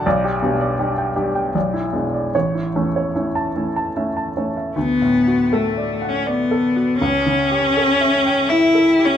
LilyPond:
<<
  \new Staff \with { instrumentName = "Grand piano" } { \time 3/4 \key d \major \tempo 4 = 80 << { d''16 g'16 b,16 d''16 g'16 g''16 g'16 g''16 d''16 e'16 b,16 d''16 | cis''16 e'16 e,16 cis''16 e'16 a''16 e'16 a''16 e''16 a''16 cis''16 e''16 | r2. | r2. | } \\ { b,,8 <g d'>8 <g d'>8 <g d'>8 b,,8 <gis d'>8 | a,,8 <a cis'>8 <a cis'>8 <a cis'>8 <a cis'>8 <a cis'>8 | \tuplet 3/2 { d,8 a,8 fis'8 a'8 d''8 fis''8 d''8 a'8 fis'8 } | \tuplet 3/2 { cis,8 cis8 g'8 a'8 e''8 g''8 e''8 a'8 g'8 } | } >> }
  \new Staff \with { instrumentName = "Cello" } { \time 3/4 \key d \major r2. | r2. | b4 a8. cis'16 b4 | cis'2 e'8. cis'16 | }
>>